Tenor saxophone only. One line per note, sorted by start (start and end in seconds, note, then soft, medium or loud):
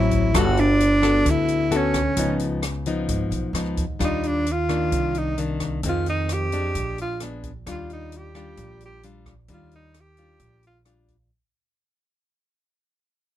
0.00 0.40 E4 medium
0.38 0.61 F#4 medium
0.60 1.32 D4 medium
1.30 1.77 E4 loud
1.76 2.42 C#4 medium
4.04 4.29 D#4 medium
4.27 4.53 D4 medium
4.52 5.19 F4 medium
5.18 5.39 D#4 medium
5.89 6.08 F4 medium
6.09 6.34 D#4 loud
6.33 7.00 G4 medium
7.01 7.21 F4 medium
7.71 7.90 F4 medium
7.93 8.19 D#4 medium
8.17 8.83 G4 medium
8.85 9.04 G4 loud
9.53 9.73 F4 medium
9.76 10.02 D#4 medium
10.00 10.66 G4 loud
10.67 10.80 F4 medium